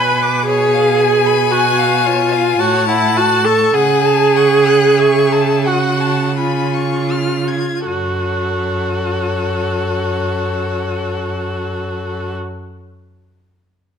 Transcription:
Already playing: cello B2, viola B4, violin G#5 B5
0.22 violin D6
0.45 viola G#4, violin G#5
0.49 violin C#5
0.74 violin F5
1.01 violin G#5
1.26 violin B5
1.51 viola F#4, violin G#5
1.79 violin F5
2.06 viola F4, violin C#5
2.32 violin F5
2.59 cello A2, viola F#4, violin C#5 A5
2.89 viola E4, violin F#5
3.17 viola F#4, violin A5
3.45 viola A4, violin C#6
3.74 cello C#3, viola G#4, violin F#5 G#5
4.05 violin A5
4.36 violin F#5 C#6
4.67 violin F#6
4.99 violin E5 C#6
5.33 violin A5
5.67 viola F#4, violin F#5
6.01 violin A5
6.36 viola F4, violin G#5 B5
6.74 violin C#6
7.11 violin F6
7.48 violin G#6
7.86 cello F#2, viola F#4, violin A4 C#5

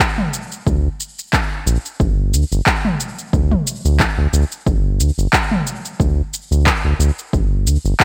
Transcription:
0.00 kick, shaker
0.18 mid tom
0.33 shaker
0.52 shaker
0.67 analog synth bass D2, kick, shaker
1.00 shaker
1.19 shaker
1.33 kick, clap, shaker
1.66 analog synth bass A#1, shaker
1.85 shaker
2.00 analog synth bass G1, kick, shaker
2.33 analog synth bass D2, shaker
2.52 analog synth bass G1, shaker
2.66 kick, clap, shaker
2.85 mid tom
3.00 shaker
3.19 shaker
3.33 analog synth bass D2, kick, shaker
3.51 mid tom
3.67 shaker
3.85 analog synth bass D2, shaker
4.00 kick, clap, shaker
4.18 analog synth bass D2
4.33 analog synth bass D2, shaker
4.52 shaker
4.66 analog synth bass G1, kick, shaker
5.00 analog synth bass D2, shaker
5.18 analog synth bass G1, shaker
5.33 kick, clap, shaker
5.51 mid tom
5.67 shaker
5.85 shaker
6.00 analog synth bass D2, kick, shaker
6.34 shaker
6.51 analog synth bass D2, shaker
6.66 kick, clap, shaker
6.85 analog synth bass D2
6.99 analog synth bass D2, shaker
7.19 shaker
7.33 analog synth bass G1, kick, shaker
7.66 analog synth bass D2, shaker
7.85 analog synth bass G1, shaker
8.00 kick, clap, shaker

